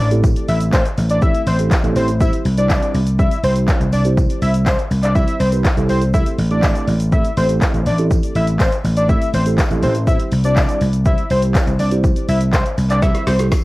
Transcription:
0.00 A1
0.11 A3 C4 E4 G4 A4, closed hi-hat, shaker
0.24 kick, tambourine, shaker
0.36 closed hi-hat, shaker
0.48 A1 E5, open hi-hat, tambourine, shaker
0.60 closed hi-hat, shaker
0.73 C5, kick, clap, tambourine, shaker
0.85 closed hi-hat, shaker
0.97 A1, open hi-hat, tambourine, shaker
1.10 D5, closed hi-hat, shaker
1.22 A3 C4 E4 G4 A4 E5, kick, shaker
1.35 closed hi-hat, shaker
1.47 A1 C5, open hi-hat, tambourine, shaker
1.59 A3 C4 E4 G4 A4, closed hi-hat, shaker
1.71 kick, clap, tambourine, shaker
1.83 A1 A3 C4 E4 G4 A4, closed hi-hat, shaker
1.95 A1 C5, open hi-hat, tambourine, shaker
2.08 closed hi-hat, shaker
2.20 G3 C4 E4 G4 C5 E5, kick, tambourine, shaker
2.33 closed hi-hat, shaker
2.45 C2, open hi-hat, shaker
2.57 G3 C4 E4 G4 C5 D5, closed hi-hat, shaker
2.69 kick, clap, tambourine, shaker
2.82 closed hi-hat, shaker
2.94 C2, open hi-hat, tambourine, shaker
3.07 closed hi-hat, shaker
3.19 G3 C4 E4 G4 D5 E5, kick, shaker
3.31 closed hi-hat, shaker
3.43 C2 G3 C4 E4 G4 C5, open hi-hat, tambourine, shaker
3.56 closed hi-hat, shaker
3.68 kick, clap, tambourine, shaker
3.80 C2, closed hi-hat, shaker
3.92 C2 D5, open hi-hat, tambourine, shaker
4.05 G3 C4 E4 G4 C5, closed hi-hat, shaker
4.17 kick, tambourine, shaker
4.30 closed hi-hat, shaker
4.42 C2 E5, open hi-hat, tambourine, shaker
4.54 closed hi-hat, shaker
4.66 C5, kick, clap, tambourine, shaker
4.79 closed hi-hat, shaker
4.91 C2, open hi-hat, tambourine, shaker
5.03 D5, clap, closed hi-hat, shaker
5.15 G3 C4 E4 G4 C5 E5, kick, tambourine, shaker
5.28 closed hi-hat, shaker
5.40 C2 C5, open hi-hat, tambourine, shaker
5.52 G3 C4 E4 G4 B4, closed hi-hat, shaker
5.65 kick, clap, tambourine, shaker
5.77 C2 G3 C4 E4 G4 A4, closed hi-hat, shaker
5.89 C2 C5, open hi-hat, tambourine, shaker
6.02 closed hi-hat, shaker
6.14 A3 C4 E4 G4 A4 E5, kick, tambourine, shaker
6.26 closed hi-hat, shaker
6.38 A1, open hi-hat, shaker
6.51 A3 C4 E4 G4 A4 D5, closed hi-hat, shaker
6.63 kick, clap, tambourine, shaker
6.75 closed hi-hat, shaker
6.88 A1, open hi-hat, tambourine, shaker
7.00 closed hi-hat, shaker
7.12 A3 C4 E4 G4 A4 E5, kick, shaker
7.25 closed hi-hat, shaker
7.37 A1 A3 C4 E4 G4 A4 C5, open hi-hat, tambourine, shaker
7.49 closed hi-hat, shaker
7.61 kick, clap, tambourine, shaker
7.74 A1, closed hi-hat, shaker
7.86 A1 D5, open hi-hat, tambourine, shaker
7.98 A3 C4 E4 G4 A4, closed hi-hat, shaker
8.11 kick, tambourine, shaker
8.23 closed hi-hat, shaker
8.35 A1 E5, open hi-hat, shaker
8.47 closed hi-hat, shaker
8.59 C5, kick, clap, tambourine, shaker
8.72 closed hi-hat, shaker
8.84 A1, open hi-hat, tambourine, shaker
8.96 D5, closed hi-hat, shaker
9.09 A3 C4 E4 G4 A4 E5, kick, shaker
9.21 closed hi-hat, shaker
9.33 A1 C5, open hi-hat, tambourine, shaker
9.46 A3 C4 E4 G4 A4, closed hi-hat, shaker
9.58 kick, clap, tambourine, shaker
9.70 A1 A3 C4 E4 G4 A4, closed hi-hat, shaker
9.82 A1 C5, open hi-hat, tambourine, shaker
9.95 closed hi-hat, shaker
10.07 G3 C4 E4 G4 C5 E5, kick, tambourine, shaker
10.19 closed hi-hat, shaker
10.32 C2, open hi-hat, shaker
10.44 G3 C4 E4 G4 C5 D5, closed hi-hat, shaker
10.56 kick, clap, tambourine, shaker
10.69 closed hi-hat, shaker
10.81 C2, open hi-hat, tambourine, shaker
10.93 closed hi-hat, shaker
11.05 G3 C4 E4 G4 C5 E5, kick, shaker
11.18 closed hi-hat, shaker
11.30 C2 G3 C4 E4 G4 C5, open hi-hat, tambourine, shaker
11.42 closed hi-hat, shaker
11.55 kick, clap, tambourine, shaker
11.67 C2, closed hi-hat, shaker
11.79 C2 D5, open hi-hat, tambourine, shaker
11.91 G3 C4 E4 G4 C5, closed hi-hat, shaker
12.04 kick, tambourine, shaker
12.16 closed hi-hat, shaker
12.29 C2 E5, open hi-hat, tambourine, shaker
12.41 closed hi-hat, shaker
12.53 C5, kick, clap, tambourine, shaker
12.66 closed hi-hat, shaker
12.78 C2, open hi-hat, tambourine, shaker
12.90 D5, clap, closed hi-hat, shaker
13.02 G3 C4 E4 G4 C5 E5, kick, snare, tambourine, shaker
13.15 snare, closed hi-hat, shaker
13.27 C2 C5, snare, open hi-hat, tambourine, shaker
13.39 G3 C4 E4 G4 A4, snare, closed hi-hat, shaker
13.52 kick, snare, tambourine, shaker

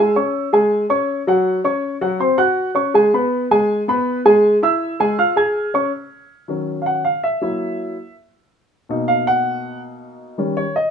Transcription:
0.00 G#3 G#4 G#5
0.16 C#4 C#5 C#6
0.53 G#3 G#4 G#5
0.90 C#4 C#5 C#6
1.27 F#3 F#4 F#5
1.64 C#4 C#5 C#6
2.01 F#3 F#4 F#5
2.20 C4 C5 C6
2.38 F#4 F#5 F#6
2.75 C#4 C#5 C#6
2.94 G#3 G#4 G#5
3.14 B3 B4 B5
3.51 G#3 G#4 G#5
3.88 B3 B4 B5
4.25 G#3 G#4 G#5
4.63 E4 E5 E6
5.00 G#3 G#4 G#5
5.18 F4 F5 F6
5.36 G#4 G#5 G#6
5.74 C#4 C#5 C#6
6.48 D#3 F#3 C#4
6.82 F5
6.86 F#5
7.05 F5
7.24 E5
7.42 F#3 A#3 E4
8.89 B2 A#3 D#4
9.08 F5
9.27 F#5
10.38 D#3 G3 C#4
10.57 C#5
10.76 D#5

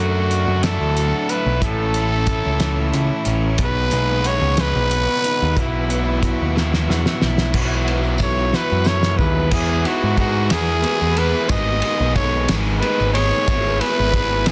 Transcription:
Already playing: D3 F#3 A3 D4 F#4 D5 F#5 A5 E6
0.00 F#2 A3
0.31 F#4, closed hi-hat
0.48 F#2
0.63 E4 A4, snare, closed hi-hat
0.80 D2
0.97 F#4, closed hi-hat
1.29 E4 B4, closed hi-hat
1.46 B1
1.60 A1 A2 E3 A3 C#4 A4 C#5 E5, kick, closed hi-hat
1.94 A3, closed hi-hat
2.27 E4, kick, closed hi-hat
2.46 C#2
2.60 C#4, snare, closed hi-hat
2.93 C#2 E4, closed hi-hat
3.25 A1 C#4, closed hi-hat
3.57 B2 B3 D#4 G#4 B4 F#5 G#5 D#6, kick, closed hi-hat
3.64 B4
3.91 B1 G#3, closed hi-hat
4.24 F#4 C#5, closed hi-hat
4.41 C#2
4.57 D#4 B4, snare, closed hi-hat
4.75 B1
4.91 F#4, closed hi-hat
5.24 D#4, closed hi-hat
5.42 D#2
5.56 B1 B2 F#3 B3 E4 E5 E6, kick, closed hi-hat
5.90 B3, closed hi-hat
6.23 F#4, kick, closed hi-hat
6.41 D#2
6.55 E4, snare
6.74 snare
6.89 E2 F#4, snare
7.06 snare
7.22 B1 E4, snare
7.38 snare
7.52 B1 B2 E3 F#3 B3 E4 F#4 B4 E5 B5, kick, crash, tambourine
7.88 ride
8.03 tambourine
8.18 B1, kick, ride, tambourine
8.22 A4 C#5
8.53 B2 F#3 B3 E4 F#4 B4, snare
8.70 F#2, tambourine
8.84 A4 C#5, snare, tambourine
9.03 snare
9.17 D#2 G#4 B4, floor tom, tambourine
9.51 E2 E3 G#3 B3 E4 G#4 B4 G#5 B5, kick, crash, tambourine
9.84 E2 E3 G#3 B3 D#4 E4 F#4 G#4, ride
10.03 G#2
10.17 E2 E3 G#3 B3 D#4 E4 F#4 G#4, kick, ride, tambourine
10.50 E2 E3 G#3 B3 E4 G#4, snare, ride, tambourine
10.67 tambourine
10.83 E2 E3 G#3 B3 E4 G#4, ride, tambourine
11.00 E2, tambourine
11.16 E2 E3 G#3 B3 E4 G#4 B4, ride
11.33 tambourine
11.49 G#1 G#2 D#3 G#3 B3 D#4 G#4 B4 D#5, kick, ride, tambourine
11.82 G#2 D#3 G#3 B3 D#4 G#4, ride
12.00 B1
12.15 G#2 D#3 G#3 B3 D#4 G#4 A4 C#5, kick, ride, tambourine
12.48 G#1 G#2 D#3 G#3 B3 D#4 G#4, snare, ride, tambourine
12.66 tambourine
12.80 G#2 D#3 G#3 B3 G#4 B4, ride, tambourine
12.84 D#4 G#4
12.99 G#1, tambourine
13.13 G#2 D#3 G#3 B3 D#4 G#4 C#5, ride
13.18 G#4
13.33 tambourine
13.48 G#1 G#3 B3 E4 G#4 B5, kick, ride, tambourine
13.81 G#3 B3 E4 G#4 B4, ride
13.99 G#1
14.14 G#3 B3 E4 G#4, kick, ride, tambourine
14.46 G#1 G#3 B3 E4 G#4, snare, ride, tambourine

